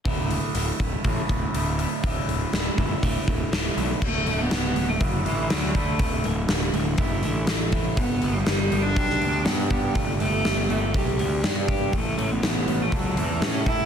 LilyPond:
<<
  \new Staff \with { instrumentName = "Cello" } { \time 4/4 \key g \lydian \tempo 4 = 121 r1 | r1 | a8. b4 a16 fis8 e8 fis8 a8~ | a8 r2. r8 |
b8. g4 d'4~ d'16 b8 b8 | a8 a4 a4 r4. | a8. b4 a16 fis8 e8 cis'8 e'8 | }
  \new Staff \with { instrumentName = "Clean electric guitar" } { \time 4/4 \key g \lydian <d, a, d a e'>4 <a, d a e'>8 <d a e'>8 <a, d a e'>4 <d, a, d a e'>8 <d a e'>8 | <d, a, d a e'>4 <a, d a e'>8 <d a e'>8 <a, d a e'>4 <d, a, d a e'>8 <d a e'>8 | d,8 d8 a,8 d8 e'8 d8 a8 e'8 | d,8 d8 a,8 d8 e'8 d8 a8 e'8 |
g,8 b8 g8 b8 g'8 b8 d'8 g'8 | g,8 b8 g8 b8 g'8 b8 d'8 g'8 | a,8 cis'8 a8 cis'8 a'8 cis'8 e'8 a'8 | }
  \new Staff \with { instrumentName = "Picked electric bass" } { \clef bass \time 4/4 \key g \lydian d,,4 d,,8 d,,8 a,,8 d,,8 d,,4 | d,,8 d,,8 d,,8 g,,8 d,,8 d,,8 d,,8 b,,8 | d,,8 d,,8 d,,8 d,,8 fis,,8 a,,8 d,4 | d,,8 d,,8 d,,8 d,,8 fis,,8 a,,8 a,,4 |
g,,8 g,,8 g,,8 g,,8 b,,8 d,8 g,4 | g,,8 g,,8 g,,8 g,,8 b,,8 d,8 g,4 | a,,8 a,,8 a,,8 a,,8 cis,8 e,8 a,4 | }
  \new DrumStaff \with { instrumentName = "Drums" } \drummode { \time 4/4 <hho bd>8 hho8 hho8 <hho bd>8 <hho bd>8 <hho bd>8 hho8 hho8 | <hho bd>8 hho8 <hho sn>8 <hho bd>8 <hho bd>8 <hho bd>8 <hho sn>8 hho8 | <cymc bd>8 hho8 <hho sn>8 hho8 <hho bd>8 hho8 <hho sn>16 sn16 <hho bd>8 | <hho bd>8 hho8 <hho sn>8 hho8 <hho bd>8 hho8 <hho sn>8 <hho bd>8 |
<hho bd>8 hho8 <hho sn>8 hho8 <hho bd>16 sn16 hho8 <hho sn>8 <hho bd>8 | <hho bd>8 hho8 <hho sn>8 hho8 <hho bd>8 hho8 <hho sn>8 <hho bd>8 | <hho bd>8 hho8 <hho sn>8 hho8 <hho bd>8 hho8 <hho sn>8 <hho bd>8 | }
>>